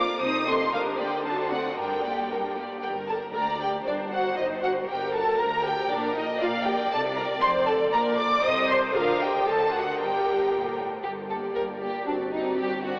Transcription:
Already playing: A#1 A#2 A#3 F4 F5 D6
0.21 C2 C3 C4 D#4 C5 D#6
0.46 A3 C4 A4 D#5 C6
0.72 D2 D3 G3 D4 A#4 F5
0.97 A#3 G4 D5 G5
1.25 F#3 D4 A4 C5 A5
1.51 A3 C4 F#4 D5 F#5
1.77 G1 G2 G3 D4 A#4 G5
2.05 A#3 G4 D5
2.31 G3 D4 A#4
2.57 A#3 G4 D5
2.82 G1 G2 G4 A#4 G5
3.08 A4 A5
3.34 D2 A#4 D5 A#5
3.61 G4 G5
3.86 G1 G2 D4 C5 D5
4.12 F#4 F#5
4.37 G1 G2 D#4 D#5
4.62 F#4 F#5
4.88 G1 G2 G4 A#4 G5
5.13 A4 A5
5.39 D2 A#4 A#5
5.63 G4 G5
5.89 A#1 A#2 D4 A#4 D5
6.14 D#4 D#5
6.40 A#1 A#2 F4 D5 F5
6.65 G4 G5
6.91 C2 C3 A4 A5
7.17 A#4 A#5
7.41 F1 F2 C5 C6
7.66 A4 A5
7.92 A#1 A#2 A#4 D5 A#5
8.17 D5 D6
8.43 C2 C3 C5 D#5 D#6
8.69 C5 C6
8.94 D2 D3 F4 A#4 F5
9.21 G4 G5
9.46 D2 D3 A4 A5
9.72 F#4 F#5
9.98 G1 G2 G4 A#4 G5
10.52 A#2
10.78 A2
11.03 G1 G2 G4
11.30 A#3 G4 A4 D5
11.56 G1 G2 A#4
11.82 A#3 G4 D5
12.07 G1 G2 C4 D4 F#4 D5
12.33 C4 D#4 F#4 D5
12.58 G1 G2 G4
12.85 C4 F#4 D5

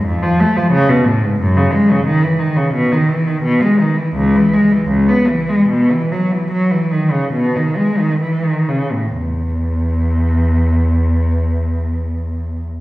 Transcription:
0.05 F2
0.23 F3
0.40 A3
0.56 F3
0.72 C#3
0.89 B2
1.06 A2
1.23 G#2
1.39 F#2
1.57 C#3
1.74 G#3
1.91 C#3
2.06 D#3
2.23 E3
2.39 D#3
2.56 C#3
2.74 B2
2.92 D#3
3.08 E3
3.26 D#3
3.43 B2
3.61 G#3
3.80 D#3
3.97 E3
4.16 C#2
4.36 E3
4.53 G#3
4.72 E3
4.89 C#2
5.09 B3
5.28 E3
5.48 G#3
5.69 B2
5.91 E3
6.12 F#3
6.32 E3
6.51 F#3
6.71 E3
6.91 D#3
7.11 C#3
7.33 B2
7.56 D#3
7.77 G#3
7.99 D#3
8.20 E3
8.43 D#3
8.68 C#3
8.93 A2
9.16 E2

